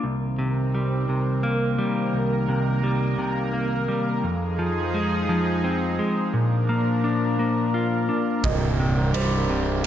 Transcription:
0.03 C2 D#3 C4 A#4
0.39 C3
0.75 G3
1.09 C3
1.43 A#3
1.79 G3
2.13 C2 A#3
2.49 C3
2.84 G3
3.18 C3
3.53 A#3
3.88 G3
4.24 F2 F3 D#4 G#4
4.59 F3
4.94 G#3
5.29 F3
5.64 C4
5.99 G#3
6.33 A#2 F3 D4 A#4
6.69 A#3
7.04 D4
7.39 A#3
7.74 F4
8.09 D4
8.43 C1 C2 D#3 C4 D#5, kick, ride
8.79 C3
9.14 G3 C5, ride
9.49 C3

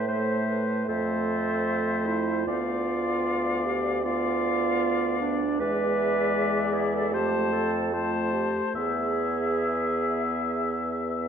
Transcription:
Already playing: A2
0.08 A3 C5 E5
0.49 B4
0.88 F2 A3 A4 C5 E5
2.06 E4
2.45 D2 B3 F4 D5 F5
3.65 G4
4.04 B3 F4 D5 F5
5.20 D4
5.60 E2 G#3 B4 D5 E5
6.74 G#4
6.94 A4
7.12 F2 A3 G4 C5 A5
7.52 A4
7.92 A3 F4 C5 A5
8.33 G4
8.75 E2 B3 G#4 E5

